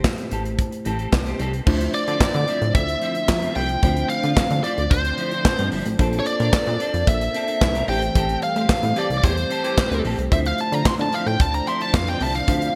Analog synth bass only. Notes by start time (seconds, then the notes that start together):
0.32 A1
0.86 A1
1.13 C2
1.40 C2
1.67 D2
2.08 D3
2.35 D3
2.62 A2
2.75 D2
3.29 F2
3.56 C2
3.83 D2
4.24 D3
4.51 D3
4.78 D2
4.91 D2
5.59 G2
5.72 G1
5.86 A1
5.99 A#1
6.40 A#2
6.67 A#2
6.94 F2
7.07 A#1
7.61 C2
7.88 A1
8.16 A1
8.56 A2
8.83 A2
9.10 C2
9.24 E2
9.91 D2
10.05 A#1
10.18 C2
10.32 D2
10.72 D3
10.99 D3
11.26 A2
11.40 D2
11.94 F2
12.21 C2
12.48 D2